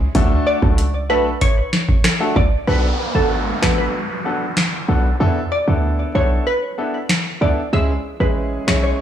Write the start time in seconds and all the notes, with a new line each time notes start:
0.15 D2 A3 D4 F#4 A4, kick, closed hi-hat
0.47 D5
0.62 C#2 A3 D4 F#4 A4, kick
0.78 closed hi-hat
1.09 B1 A3 D4 F#4 A4 B4
1.41 C#5, kick, closed hi-hat
1.73 snare
1.89 kick
2.04 finger snap, cross-stick, snare, closed hi-hat
2.20 A3 D4 F#4 A4
2.36 C#2 D5, kick
2.67 B1 B3 D4 F#4 A4 B4, downlifter
3.15 G#1 B3 D4 F#4 A4
3.62 A1 B3 D4 F#4 A4 B4, finger snap, snare
3.78 B4
4.25 B3 D4 F#4 A4
4.57 finger snap, snare
4.88 B1 B3 D4 F#4 A4
5.20 E2 B3 D4 E4 A4
5.52 D5
5.67 D2 B3 D4 E4 A4
6.15 B1 B3 D4 E4 A4 C#5
6.47 B4
6.78 B3 D4 E4 A4
7.09 finger snap, snare
7.41 C#2 B3 D4 E4 A4 D5
7.73 C#2 G#3 C#4 E4 G#4 E5, riser
8.20 A1 G#3 C#4 E4 G#4 B4
8.67 B1 G#3 C#4 E4 G#4 C#5, finger snap, snare
8.84 C#5